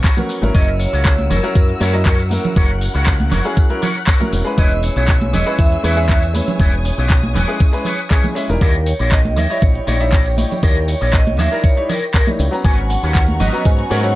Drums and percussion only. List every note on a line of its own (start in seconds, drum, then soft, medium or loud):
0.04 kick loud
0.04 clap loud
0.04 closed hi-hat medium
0.04 tambourine medium
0.04 shaker soft
0.17 closed hi-hat soft
0.17 tambourine soft
0.17 high conga medium
0.17 low conga medium
0.29 open hi-hat loud
0.29 tambourine loud
0.29 shaker medium
0.43 closed hi-hat soft
0.43 tambourine soft
0.43 high conga medium
0.43 shaker soft
0.55 kick loud
0.55 closed hi-hat medium
0.55 tambourine soft
0.55 shaker soft
0.68 closed hi-hat soft
0.79 open hi-hat loud
0.79 tambourine medium
0.79 shaker medium
0.93 closed hi-hat soft
0.93 tambourine soft
0.93 shaker soft
1.05 kick loud
1.05 clap loud
1.05 closed hi-hat medium
1.05 tambourine medium
1.05 shaker soft
1.18 closed hi-hat soft
1.18 high conga medium
1.30 open hi-hat loud
1.30 tambourine loud
1.30 low conga medium
1.30 shaker medium
1.44 closed hi-hat soft
1.44 tambourine soft
1.44 shaker soft
1.55 kick loud
1.55 closed hi-hat medium
1.55 tambourine medium
1.55 shaker soft
1.69 closed hi-hat soft
1.81 open hi-hat loud
1.81 tambourine loud
1.81 high conga medium
1.81 shaker medium
1.94 closed hi-hat soft
1.94 tambourine soft
1.94 shaker soft
2.06 kick loud
2.06 clap loud
2.06 closed hi-hat medium
2.06 tambourine medium
2.06 shaker soft
2.19 closed hi-hat soft
2.19 tambourine soft
2.31 open hi-hat loud
2.31 tambourine medium
2.31 high conga medium
2.31 shaker medium
2.44 closed hi-hat soft
2.44 tambourine soft
2.44 low conga loud
2.44 shaker soft
2.56 kick loud
2.56 closed hi-hat medium
2.56 tambourine medium
2.56 shaker soft
2.69 closed hi-hat soft
2.81 open hi-hat loud
2.81 tambourine loud
2.81 shaker medium
2.94 closed hi-hat soft
2.94 tambourine soft
2.94 shaker soft
3.06 kick loud
3.06 clap loud
3.06 closed hi-hat medium
3.06 tambourine medium
3.06 shaker soft
3.20 closed hi-hat soft
3.20 high conga loud
3.32 clap soft
3.32 open hi-hat loud
3.32 tambourine medium
3.32 low conga loud
3.32 shaker medium
3.45 closed hi-hat soft
3.45 tambourine soft
3.45 shaker soft
3.57 kick loud
3.57 closed hi-hat medium
3.57 tambourine medium
3.57 shaker soft
3.70 closed hi-hat soft
3.82 open hi-hat loud
3.82 tambourine loud
3.82 low conga loud
3.82 shaker medium
3.95 closed hi-hat soft
3.95 tambourine soft
3.95 shaker soft
4.07 kick loud
4.07 clap loud
4.07 closed hi-hat medium
4.07 tambourine medium
4.07 shaker soft
4.21 closed hi-hat soft
4.21 tambourine soft
4.21 high conga loud
4.21 low conga medium
4.33 open hi-hat loud
4.33 tambourine loud
4.33 shaker medium
4.46 closed hi-hat soft
4.46 tambourine soft
4.46 shaker soft
4.58 kick loud
4.58 closed hi-hat medium
4.58 tambourine soft
4.58 shaker soft
4.71 closed hi-hat soft
4.82 open hi-hat loud
4.82 tambourine medium
4.82 shaker medium
4.96 closed hi-hat soft
4.96 tambourine soft
4.96 shaker soft
5.08 kick loud
5.08 clap loud
5.08 closed hi-hat medium
5.08 tambourine medium
5.08 shaker soft
5.21 closed hi-hat soft
5.21 high conga loud
5.33 open hi-hat loud
5.33 tambourine loud
5.33 low conga loud
5.33 shaker medium
5.47 closed hi-hat soft
5.47 tambourine soft
5.47 shaker soft
5.59 kick loud
5.59 closed hi-hat medium
5.59 tambourine soft
5.59 shaker soft
5.72 closed hi-hat soft
5.83 open hi-hat loud
5.83 tambourine loud
5.83 high conga medium
5.83 shaker medium
5.97 closed hi-hat soft
5.97 tambourine soft
5.97 shaker soft
6.09 kick loud
6.09 clap loud
6.09 closed hi-hat medium
6.09 tambourine soft
6.09 shaker soft
6.23 closed hi-hat soft
6.23 tambourine soft
6.35 open hi-hat loud
6.35 tambourine medium
6.35 high conga medium
6.35 shaker medium
6.48 closed hi-hat soft
6.48 tambourine soft
6.48 low conga loud
6.48 shaker soft
6.60 kick loud
6.60 closed hi-hat medium
6.60 tambourine medium
6.60 shaker soft
6.73 closed hi-hat soft
6.85 open hi-hat loud
6.85 tambourine medium
6.85 shaker medium
6.98 closed hi-hat soft
6.98 tambourine soft
6.98 shaker soft
7.10 kick loud
7.10 clap loud
7.10 closed hi-hat medium
7.10 tambourine soft
7.10 shaker soft
7.23 closed hi-hat soft
7.23 high conga loud
7.35 clap soft
7.35 open hi-hat loud
7.35 tambourine loud
7.35 low conga medium
7.35 shaker medium
7.49 closed hi-hat soft
7.49 tambourine soft
7.49 shaker soft
7.60 kick loud
7.60 closed hi-hat medium
7.60 tambourine soft
7.60 shaker soft
7.73 closed hi-hat soft
7.73 tambourine soft
7.85 open hi-hat loud
7.85 tambourine medium
7.85 low conga medium
7.85 shaker medium
7.99 closed hi-hat soft
7.99 tambourine soft
7.99 shaker soft
8.10 kick loud
8.10 clap loud
8.10 closed hi-hat medium
8.10 tambourine soft
8.10 shaker soft
8.24 closed hi-hat soft
8.24 tambourine soft
8.24 high conga medium
8.24 low conga medium
8.36 open hi-hat loud
8.36 tambourine medium
8.36 shaker medium
8.49 closed hi-hat soft
8.49 tambourine soft
8.49 shaker soft
8.61 kick loud
8.61 closed hi-hat medium
8.61 tambourine medium
8.61 shaker soft
8.75 closed hi-hat soft
8.86 open hi-hat loud
8.86 tambourine medium
8.86 shaker medium
8.99 closed hi-hat soft
8.99 tambourine soft
8.99 shaker soft
9.12 kick loud
9.12 clap loud
9.12 closed hi-hat medium
9.12 tambourine soft
9.12 shaker soft
9.25 closed hi-hat soft
9.25 high conga medium
9.36 open hi-hat loud
9.36 tambourine loud
9.36 low conga medium
9.36 shaker medium
9.50 closed hi-hat soft
9.50 tambourine soft
9.50 shaker soft
9.62 kick loud
9.62 closed hi-hat medium
9.62 tambourine soft
9.62 shaker soft
9.75 closed hi-hat soft
9.87 open hi-hat loud
9.87 tambourine medium
9.87 high conga medium
9.87 shaker medium
10.01 closed hi-hat soft
10.01 tambourine soft
10.01 shaker soft
10.13 kick loud
10.13 clap loud
10.13 closed hi-hat medium
10.13 tambourine soft
10.13 shaker soft
10.26 closed hi-hat soft
10.26 tambourine soft
10.38 open hi-hat loud
10.38 tambourine medium
10.38 high conga medium
10.38 shaker medium
10.51 closed hi-hat soft
10.51 tambourine soft
10.51 low conga medium
10.51 shaker soft
10.63 kick loud
10.63 closed hi-hat medium
10.63 tambourine soft
10.63 shaker soft
10.76 closed hi-hat soft
10.88 open hi-hat loud
10.88 tambourine medium
10.88 shaker medium
11.01 closed hi-hat soft
11.01 tambourine soft
11.01 shaker soft
11.13 kick loud
11.13 clap loud
11.13 closed hi-hat medium
11.13 tambourine soft
11.13 shaker soft
11.27 closed hi-hat soft
11.27 high conga loud
11.39 clap soft
11.39 open hi-hat loud
11.39 tambourine loud
11.39 low conga medium
11.39 shaker medium
11.52 closed hi-hat soft
11.52 tambourine soft
11.52 shaker soft
11.64 kick loud
11.64 closed hi-hat medium
11.64 tambourine medium
11.64 shaker soft
11.77 closed hi-hat soft
11.89 open hi-hat loud
11.89 tambourine medium
11.89 low conga medium
11.89 shaker medium
12.03 closed hi-hat soft
12.03 tambourine soft
12.03 shaker soft
12.14 kick loud
12.14 clap loud
12.14 closed hi-hat medium
12.14 tambourine medium
12.14 shaker soft
12.27 closed hi-hat soft
12.27 tambourine soft
12.27 high conga loud
12.27 low conga medium
12.39 open hi-hat loud
12.39 tambourine medium
12.39 shaker medium
12.53 closed hi-hat soft
12.53 tambourine soft
12.53 shaker soft
12.65 kick loud
12.65 closed hi-hat medium
12.65 tambourine medium
12.65 shaker soft
12.78 closed hi-hat soft
12.90 open hi-hat loud
12.90 tambourine medium
12.90 shaker medium
13.03 closed hi-hat soft
13.03 tambourine soft
13.03 shaker soft
13.15 kick loud
13.15 clap loud
13.15 closed hi-hat medium
13.15 tambourine medium
13.15 shaker soft
13.28 closed hi-hat soft
13.28 high conga medium
13.40 open hi-hat loud
13.40 tambourine loud
13.40 low conga loud
13.40 shaker medium
13.54 closed hi-hat soft
13.54 tambourine soft
13.54 shaker soft
13.65 kick loud
13.65 closed hi-hat medium
13.65 tambourine medium
13.65 shaker soft
13.79 closed hi-hat soft
13.91 open hi-hat loud
13.91 tambourine medium
13.91 high conga medium
13.91 shaker medium
14.04 closed hi-hat soft
14.04 tambourine soft
14.04 shaker soft